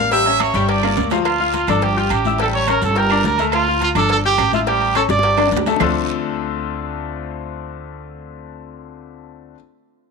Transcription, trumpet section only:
Already playing: F5
0.12 E5 E6
0.40 C#5 C#6
0.68 D5 D6

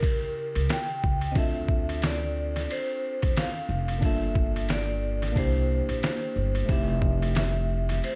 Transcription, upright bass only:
0.56 C#2
1.04 C#2
1.36 D2
3.23 E2
3.69 F1
4.02 G1
5.36 C2
5.89 A#1
6.36 G1
6.69 F1

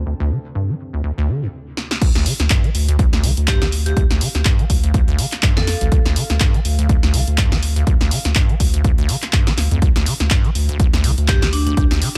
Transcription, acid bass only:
0.06 D2
0.20 D2
0.31 D3
0.55 G2
0.69 F3
0.93 D2
1.04 D2
1.18 D2
1.28 D3
1.42 F2
2.01 D2
2.15 D2
2.26 D3
2.50 G2
2.64 F3
2.88 D2
2.99 D2
3.13 D2
3.23 D3
3.48 G2
3.62 F3
3.86 D2
3.97 D2
4.10 D2
4.21 D3
4.45 G2
4.59 F3
4.84 D2
4.94 D2
5.08 D2
5.19 D3
5.43 G2
5.57 F3
5.81 D2
5.92 D2
6.05 D2
6.16 D3
6.40 G2
6.54 F3
6.79 D2
6.89 D2
7.03 D2
7.14 D3
7.38 G2
7.52 F3
7.76 D2
8.01 D2
8.11 D3
8.36 G2
8.49 F3
8.74 D2
8.84 D2
8.98 D2
9.09 D3
9.33 G2
9.47 F3
9.71 D2
9.82 D2
9.96 D2
10.06 D3
10.31 G2
10.45 F3
10.69 D2
10.80 D2
10.93 D2
11.04 D3
11.28 G2
11.42 F3
11.67 D2
11.77 D2
11.91 D2
12.02 D3

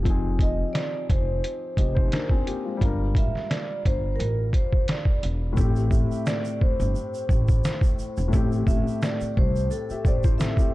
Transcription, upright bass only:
Already playing: F1
1.10 F1
1.77 F1
2.81 G1
3.15 A1
3.85 G1
4.19 A1
5.23 E1
5.57 A1
6.80 G1
7.29 A1
8.18 E1
8.33 A1
8.67 A1
9.21 muted upright bass stroke
9.37 C2
9.90 muted upright bass stroke
10.05 A1

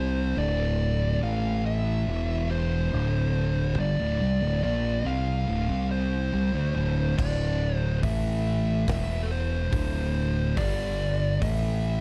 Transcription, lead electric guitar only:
Already playing: C5
0.38 D5
1.23 F5
1.66 E5
2.51 C5
3.80 D5
4.63 D5
5.07 F5
5.91 C5
7.18 D5
7.76 C5
8.04 E5
8.90 E5
9.23 A4
9.31 C5
10.57 D5
11.43 E5

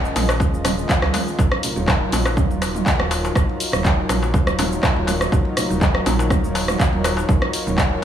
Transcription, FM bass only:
Already playing: D#1
0.16 A#1
0.54 D#1
1.03 C#2
1.39 D#1
1.76 D#1
2.12 A#1
2.50 D#1
3.00 D#1
3.36 D#1
3.73 D#1
4.10 A#1
4.48 D#1
4.97 D#1
5.32 D#1
5.70 D#1
6.06 A#1
6.44 D#1
6.93 D#1
7.29 D#1
7.67 D#1

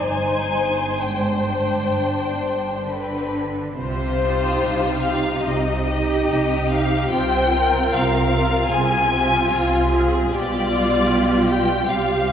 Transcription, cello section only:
0.06 G2
1.01 G#2
1.94 G2
2.87 D3
3.77 C3
4.62 C3
5.46 C3
6.30 C3
7.12 C3
7.92 C3
8.72 C3
9.52 C3
10.33 B2
11.91 C3

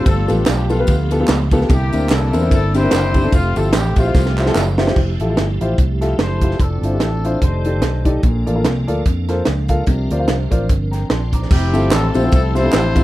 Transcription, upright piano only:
0.05 G2
0.28 B3 F4 G4 A4
0.70 B3 F4 G4 A4
0.80 B3 F4 G4 B4
1.12 B3 F4 G4 A4
1.20 B3 F4 G4 A4
1.52 B3 F4 G4 A4
1.62 B3 G4
1.70 C3
1.93 C4 D4 E4 A#4
2.33 C4 D4 E4 A#4
2.42 C4 D4 E4 A#4
2.75 C4 D4 E4 G4
2.83 C4 D4 E4 A#4
3.15 C4 D4 E4 G4
3.24 C4 D4 E4 A4
3.57 E4 F4 G4 A4
3.98 E4 F4 G4 C5
4.07 E4 F4 G4 C5
4.39 E4 F4 G4 C5
4.47 E4 F4 G4 A4
4.79 E4 F4 G4 C5
4.89 E4 F4 G4 C5
5.21 E4 F4 G4 A4
5.30 E4 F4 G4 A4
5.61 E4 F4 G4 C5
6.01 E4 F4 G4 A4
6.43 E4 F4 G4 C5
6.83 D4 E4 F4 C5
6.93 D4 E4 F4 G4
7.25 D4 E4 F4 C5
7.65 D#4 G4 A4 D5
8.05 D#4 G4 A4 D5
8.24 A#2
8.46 F4 A4 A#4 D5
8.55 F4 A4 A#4 F5
8.87 F4 A4 A#4 D5
9.29 F4 A4 A#4 C5
9.69 F4 A4 A#4 F5
9.88 C3
10.11 F4 A#4 C5 D5
10.19 F4 A#4 C5 F5
10.51 F4 A#4 C5 D5
10.91 G5 A#5
11.09 A5 C6
11.33 A#5 D6
11.73 C4 E4 F4 G4 A4
12.15 C4 E4 F4 G4 C5
12.24 C4 E4 F4 G4 C5
12.55 C4 E4 F4 G4 C5
12.63 C4 E4 F4 G4 A4
12.95 C4 E4 F4 G4 C5

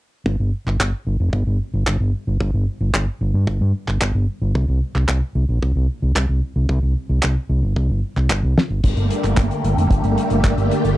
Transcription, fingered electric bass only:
0.26 G1
0.40 G1
0.67 G1
0.80 G1
1.07 G1
1.20 F1
1.33 G1
1.47 G1
1.74 G1
1.87 G1
2.00 G1
2.27 G1
2.40 G1
2.54 G1
2.81 G1
2.94 G1
3.21 G1
3.34 G2
3.47 G1
3.61 G2
3.88 G1
4.01 G1
4.15 G1
4.42 G1
4.55 C2
4.68 C2
4.95 C2
5.08 C2
5.35 C2
5.49 A#1
5.62 C2
5.75 C2
6.02 C2
6.15 C2
6.29 C2
6.56 C2
6.69 C2
6.83 C2
7.09 C2
7.24 C2
7.49 C2
7.63 G1
7.76 C2
7.90 G1
8.17 C2
8.30 G1
8.43 C2
8.70 G1
8.84 G1
8.97 G1
9.24 G1
9.37 G1
9.64 G1
9.77 F1
9.91 G1
10.04 G1
10.31 G1
10.44 G1
10.58 G1
10.84 G1

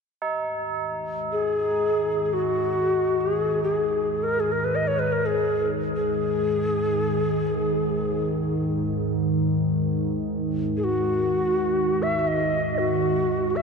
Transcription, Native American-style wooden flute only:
1.32 G#4
2.26 G#4
2.33 F#4
3.21 G#4
3.63 G#4
4.23 A#4
4.40 G#4
4.52 A#4
4.64 B4
4.75 D#5
4.87 C#5
4.99 B4
5.12 A#4
5.26 G#4
5.96 G#4
10.77 G#4
10.84 F#4
12.03 E5
12.19 E5
12.27 D#5
12.78 F#4
13.50 F#4
13.56 E5

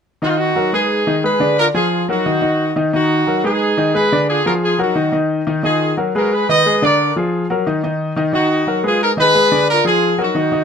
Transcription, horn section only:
0.23 D#4 F#4
0.29 F4
0.37 D#4 F#4
0.74 D#4 G#4
1.25 G#4 B4
1.59 F4 A#4
1.75 F4 G#4
2.10 D#4 F#4
2.95 D#4 F#4
3.45 D#4 G#4
3.95 G#4 B4
4.30 F4 G#4
4.46 F#4 A#4
4.63 F4 G#4
4.81 D#4 F#4
5.65 F4 G#4
6.17 F#4 A#4
6.33 G#4 B4
6.49 B4 D#5
6.84 A#4 D5
8.35 D#4 F#4
8.86 F4 G#4
9.03 D#4 A#4
9.21 G#4 B4
9.70 F4 A#4
9.88 F4 G#4
10.22 D#4 F#4

